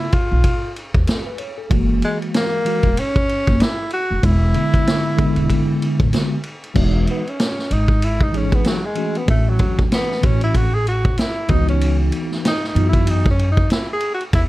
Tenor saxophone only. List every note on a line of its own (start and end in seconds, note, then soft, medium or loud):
0.00 0.15 E4 loud
0.13 0.76 F4 loud
2.05 2.18 G#3 medium
2.36 3.01 A#3 loud
3.00 3.64 C#4 loud
3.62 3.93 E4 medium
3.94 4.26 F#4 loud
4.25 6.13 E4 loud
7.11 7.30 B3 medium
7.29 7.74 C#4 medium
7.73 8.06 D#4 medium
8.05 8.25 E4 medium
8.24 8.38 D#4 medium
8.37 8.56 C#4 medium
8.55 8.69 B3 medium
8.68 8.87 F#3 medium
8.86 9.19 G#3 medium
9.18 9.29 B3 medium
9.30 9.51 A3 medium
9.49 9.80 F#3 medium
9.94 10.27 B3 loud
10.25 10.43 C#4 medium
10.43 10.58 E4 loud
10.56 10.76 F#4 loud
10.74 10.87 G#4 loud
10.88 11.20 F#4 medium
11.19 11.52 E4 loud
11.51 11.69 D#4 loud
11.69 11.98 C#4 medium
12.47 12.65 D#4 medium
12.68 12.86 D#4 medium
12.89 13.12 E4 medium
13.10 13.30 D#4 medium
13.31 13.49 C#4 medium
13.52 13.70 D#4 medium
13.72 13.91 E4 medium
13.93 14.12 G#4 loud
14.14 14.23 F#4 medium
14.35 14.44 E4 medium